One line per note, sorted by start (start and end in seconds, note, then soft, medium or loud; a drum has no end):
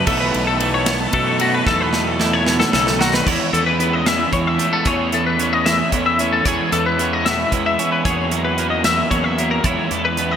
0.00 1.14 E4 medium
0.06 0.31 B1 loud
0.06 1.11 B2 loud
0.06 0.60 B2 medium
0.06 0.60 E3 medium
0.06 1.12 F#3 medium
0.06 1.12 A3 loud
0.06 0.61 A3 medium
0.06 0.87 B3 medium
0.06 1.13 D#4 loud
0.06 0.20 A4 medium
0.06 kick loud
0.06 crash loud
0.20 0.47 B4 medium
0.34 1.06 B1 medium
0.34 ride medium
0.47 0.74 A4 medium
0.60 2.18 E3 medium
0.60 1.40 A3 medium
0.60 ride medium
0.74 1.00 C#5 medium
0.86 3.27 B3 medium
0.86 snare loud
0.86 ride medium
1.00 1.13 A4 medium
1.13 1.64 F#2 medium
1.13 1.61 B2 medium
1.13 1.65 B2 medium
1.13 1.66 F#3 medium
1.13 1.66 A3 medium
1.13 1.66 D#4 medium
1.13 1.27 E4 soft
1.13 1.40 A4 medium
1.13 kick medium
1.13 ride medium
1.27 1.67 F#4 soft
1.40 2.19 A3 medium
1.40 1.54 F#4 medium
1.40 ride medium
1.55 1.67 B4 medium
1.66 2.62 E2 medium
1.66 2.20 B2 medium
1.66 2.71 B2 medium
1.66 2.72 F#3 loud
1.66 2.72 A3 loud
1.66 2.73 D#4 loud
1.66 1.81 A4 medium
1.66 kick loud
1.66 snare medium
1.81 2.08 B4 medium
1.93 snare medium
2.08 2.33 A4 medium
2.19 3.52 E3 medium
2.19 3.27 A3 medium
2.19 snare medium
2.33 2.59 C#5 medium
2.46 2.72 B2 medium
2.46 snare medium
2.60 2.72 A4 medium
2.60 snare medium
2.72 3.21 B1 medium
2.72 3.24 B2 medium
2.72 2.99 C#3 medium
2.72 3.25 F#3 medium
2.72 3.25 A3 medium
2.72 3.25 D#4 medium
2.72 3.00 A4 medium
2.72 snare medium
2.87 snare medium
2.99 3.26 D#3 medium
2.99 3.14 F#4 medium
2.99 snare medium
3.14 3.27 B4 medium
3.14 snare medium
3.26 3.38 E2 medium
3.26 4.05 E2 medium
3.26 3.79 E3 medium
3.26 3.54 G#3 medium
3.26 3.53 C#4 loud
3.26 4.86 E4 medium
3.26 3.52 E4 loud
3.26 3.53 C#5 medium
3.26 kick loud
3.26 crash medium
3.52 4.25 E2 loud
3.52 4.32 E3 medium
3.52 3.80 G#3 soft
3.52 3.80 C#4 medium
3.52 3.81 E4 medium
3.52 3.66 A4 medium
3.52 closed hi-hat medium
3.66 3.93 B4 medium
3.79 4.32 E3 medium
3.79 4.07 G#3 medium
3.79 4.58 B3 medium
3.79 4.06 C#4 medium
3.79 4.05 E4 medium
3.79 closed hi-hat medium
3.93 4.06 D#5 medium
4.06 4.85 E2 medium
4.06 4.32 G#3 soft
4.06 4.33 C#4 medium
4.06 4.34 E4 medium
4.06 4.33 E5 medium
4.06 snare loud
4.06 closed hi-hat medium
4.32 4.57 E2 medium
4.32 4.86 E3 medium
4.32 5.12 E3 medium
4.32 4.60 G#3 medium
4.32 4.59 C#4 medium
4.32 4.58 E4 medium
4.32 4.47 C#5 medium
4.32 kick medium
4.32 closed hi-hat medium
4.47 4.73 E5 medium
4.59 4.86 G#3 medium
4.59 4.73 A3 medium
4.59 4.87 C#4 medium
4.59 4.87 E4 medium
4.59 closed hi-hat medium
4.73 4.86 B3 soft
4.73 4.86 A4 medium
4.85 5.65 E2 medium
4.85 5.81 E2 medium
4.85 5.38 E3 medium
4.85 5.14 A3 loud
4.85 5.13 C#4 medium
4.85 5.12 E4 loud
4.85 6.48 G#4 medium
4.85 5.13 C#5 medium
4.85 kick loud
4.85 closed hi-hat medium
5.12 5.93 E3 medium
5.12 5.38 A3 medium
5.12 5.39 C#4 medium
5.12 5.40 E4 medium
5.12 5.26 A4 medium
5.12 closed hi-hat medium
5.27 5.53 B4 medium
5.38 5.92 E3 medium
5.38 5.67 A3 medium
5.38 5.67 C#4 medium
5.38 6.20 C#4 medium
5.38 5.65 E4 medium
5.38 closed hi-hat medium
5.53 5.66 D#5 medium
5.66 6.45 E2 medium
5.66 5.91 A3 medium
5.66 5.93 C#4 medium
5.66 5.94 E4 medium
5.66 5.92 E5 medium
5.66 snare medium
5.66 closed hi-hat medium
5.92 6.40 E2 medium
5.92 6.44 E3 medium
5.92 6.46 E3 medium
5.92 6.19 A3 medium
5.92 6.20 C#4 medium
5.92 6.18 E4 medium
5.92 6.06 C#5 medium
5.92 kick medium
5.92 closed hi-hat medium
6.06 6.33 E5 medium
6.19 6.45 A3 medium
6.19 6.46 C#4 medium
6.19 6.47 C#4 medium
6.19 6.47 E4 medium
6.19 closed hi-hat medium
6.33 6.46 A4 medium
6.45 6.58 E2 medium
6.45 8.04 E2 medium
6.45 6.98 E3 medium
6.45 6.72 E3 medium
6.45 6.73 G#3 medium
6.45 6.71 B3 loud
6.45 7.00 C#4 soft
6.45 6.71 E4 medium
6.45 8.05 G#4 medium
6.45 6.72 C#5 medium
6.45 kick loud
6.45 closed hi-hat medium
6.72 7.44 E2 medium
6.72 7.52 E3 medium
6.72 6.98 G#3 medium
6.72 6.98 B3 medium
6.72 7.00 E4 medium
6.72 6.86 A4 medium
6.72 closed hi-hat medium
6.86 7.13 B4 medium
6.98 7.51 E3 medium
6.98 7.27 G#3 medium
6.98 7.25 B3 medium
6.98 7.79 C#4 medium
6.98 7.25 E4 medium
6.98 closed hi-hat medium
7.13 7.26 D#5 medium
7.25 7.52 B2 medium
7.25 7.52 G#3 medium
7.25 7.52 B3 medium
7.25 7.53 E4 medium
7.25 7.53 E5 medium
7.25 snare medium
7.25 closed hi-hat medium
7.52 7.76 E2 medium
7.52 8.04 E3 medium
7.52 8.31 E3 medium
7.52 7.80 G#3 medium
7.52 7.78 B3 medium
7.52 7.77 E4 medium
7.52 7.66 C#5 medium
7.52 kick medium
7.52 closed hi-hat medium
7.66 7.92 E5 medium
7.78 8.05 G#3 soft
7.78 8.04 B3 medium
7.78 8.58 C#4 medium
7.78 8.06 E4 medium
7.78 closed hi-hat medium
7.92 8.05 B4 medium
8.05 8.85 E2 medium
8.05 9.01 E2 medium
8.05 8.58 E3 medium
8.05 8.33 A#3 medium
8.05 8.33 C#4 medium
8.05 8.31 F#4 medium
8.05 9.65 G#4 medium
8.05 8.32 C#5 medium
8.05 kick loud
8.05 closed hi-hat medium
8.31 9.10 F#3 medium
8.31 8.58 A#3 medium
8.31 8.59 C#4 medium
8.31 8.59 F#4 medium
8.31 8.44 A#4 medium
8.31 closed hi-hat medium
8.45 8.70 B4 medium
8.58 9.11 E3 medium
8.58 9.37 A#3 medium
8.58 8.86 A#3 medium
8.58 8.86 C#4 medium
8.58 8.84 F#4 medium
8.58 closed hi-hat medium
8.70 8.84 D#5 medium
8.84 9.64 E2 medium
8.84 9.11 A#3 medium
8.84 9.12 C#4 medium
8.84 9.12 F#4 medium
8.84 9.10 E5 medium
8.84 snare loud
8.84 closed hi-hat medium
9.11 9.59 E2 medium
9.11 9.64 E3 medium
9.11 9.62 F#3 medium
9.11 9.39 A#3 medium
9.11 9.39 C#4 medium
9.11 9.37 F#4 medium
9.11 9.24 C#5 medium
9.11 kick medium
9.11 closed hi-hat medium
9.24 9.51 E5 medium
9.38 9.62 A#3 medium
9.38 9.64 A#3 medium
9.38 9.65 C#4 medium
9.38 9.63 F#4 medium
9.38 closed hi-hat medium
9.51 9.64 A#4 medium
9.64 9.76 E2 medium
9.64 10.36 E2 medium
9.64 10.17 E3 loud
9.64 9.92 G#3 medium
9.64 9.92 C#4 medium
9.64 10.36 E4 medium
9.64 9.91 E4 medium
9.64 9.92 C#5 medium
9.64 kick loud
9.64 closed hi-hat medium
9.91 10.36 E2 medium
9.91 10.36 E3 medium
9.91 10.18 G#3 soft
9.91 10.18 C#4 medium
9.91 10.19 E4 medium
9.91 10.05 A4 medium
9.91 closed hi-hat medium
10.05 10.31 B4 medium
10.17 10.36 E3 medium
10.17 10.36 G#3 medium
10.17 10.36 B3 medium
10.17 10.36 C#4 medium
10.17 10.36 E4 medium
10.17 closed hi-hat medium
10.31 10.36 D#5 medium